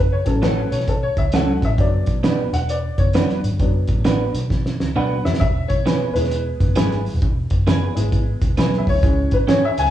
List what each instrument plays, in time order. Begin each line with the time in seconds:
Already playing: picked electric bass F#1, upright piano B4
0.12 upright piano C#5
0.25 picked electric bass A1, upright piano F#3 A3 C#4 A4, kick, closed hi-hat, muted conga
0.42 clean electric guitar A3 C#4 F#4 A4, upright piano B4, snare, closed hi-hat, high conga
0.71 picked electric bass B1, upright piano C#5, closed hi-hat, muted conga, low conga
0.80 snare
0.88 upright piano A4, kick, closed hi-hat, low conga
1.03 upright piano C#5
1.17 picked electric bass C#2, upright piano E5, kick, closed hi-hat
1.32 upright piano F#3 A3 C#4 F#5, clean electric guitar A3 C#4 F#4 A4, snare, closed hi-hat, high conga
1.49 high conga
1.62 picked electric bass A1, upright piano D#5 E5, kick, closed hi-hat
1.78 picked electric bass F#1, upright piano F#3 B3 D4 D5, kick, closed hi-hat, muted conga
2.06 picked electric bass B1, kick, closed hi-hat, muted conga
2.23 clean electric guitar B3 D4 F#4 B4, snare, closed hi-hat, high conga
2.53 picked electric bass E1, upright piano F#5, closed hi-hat, muted conga
2.69 upright piano D5, closed hi-hat
2.98 picked electric bass F#1, upright piano C#5, kick, closed hi-hat, low conga
3.13 clean electric guitar B3 D4 F#4 B4, upright piano B4, snare, closed hi-hat, high conga
3.29 snare, high conga
3.44 picked electric bass G#1, closed hi-hat
3.52 picked electric bass G1
3.59 picked electric bass F#1, upright piano F#3 B3 D4, kick, closed hi-hat, muted conga
3.88 picked electric bass A1, kick, closed hi-hat, muted conga
4.05 clean electric guitar B3 D4 F#4 B4, snare, closed hi-hat, high conga
4.34 picked electric bass B1, closed hi-hat, muted conga, low conga
4.50 kick, snare, low conga
4.66 snare
4.80 picked electric bass C#2, snare
4.96 picked electric bass B1, clean electric guitar B3 D4 F#4 B4, upright piano F#5, high conga
5.10 high conga
5.25 picked electric bass F1, upright piano E5, snare, high conga
5.34 snare
5.40 picked electric bass E1, upright piano E5, kick, closed hi-hat, muted conga
5.68 picked electric bass B1, upright piano C#5, kick, closed hi-hat, muted conga
5.86 clean electric guitar B3 E4 G#4 B4, snare, closed hi-hat, high conga
6.13 picked electric bass E1, upright piano G#3 B3 E4 B4, closed hi-hat, muted conga
6.24 snare
6.31 closed hi-hat
6.60 picked electric bass F#1, kick, closed hi-hat, low conga
6.75 picked electric bass G#1, upright piano G#3 B3 E4, clean electric guitar B3 E4 G#4 B4, snare, closed hi-hat, high conga
6.91 snare, high conga
7.06 open hi-hat
7.14 picked electric bass E1
7.22 picked electric bass E1, kick, closed hi-hat, muted conga
7.50 picked electric bass F#1, kick, closed hi-hat
7.67 clean electric guitar B3 E4 G#4 B4, snare, closed hi-hat, high conga
7.95 picked electric bass G#1, upright piano G#3 B3 E4, closed hi-hat, muted conga, low conga
8.12 kick, closed hi-hat, low conga
8.42 picked electric bass E1, kick, closed hi-hat
8.57 picked electric bass B1, clean electric guitar B3 E4 G#4 B4, snare, closed hi-hat, high conga
8.73 snare, high conga
8.78 upright piano E5
8.87 picked electric bass D2, upright piano C#5, kick, open hi-hat
9.02 picked electric bass C#2, upright piano G#3 C#4 E4, kick, closed hi-hat, muted conga
9.31 picked electric bass G#2, upright piano B4, kick, closed hi-hat, muted conga
9.48 clean electric guitar C#4 E4 G#4 C#5, upright piano C#5, snare, closed hi-hat, high conga
9.65 upright piano E5
9.78 picked electric bass C#2, upright piano G#5, closed hi-hat, muted conga
9.86 snare